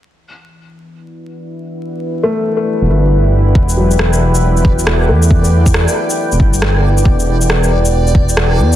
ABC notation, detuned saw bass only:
X:1
M:4/4
L:1/16
Q:"Swing 16ths" 1/4=137
K:Em
V:1 name="Detuned saw bass" clef=bass
z16 | z8 z E,,, G,,,6 | E,,,12- E,,,2 E,,2- | E,,4- E,, z4 E,,, G,,,6 |
E,,,12- E,,,2 E,,2 |]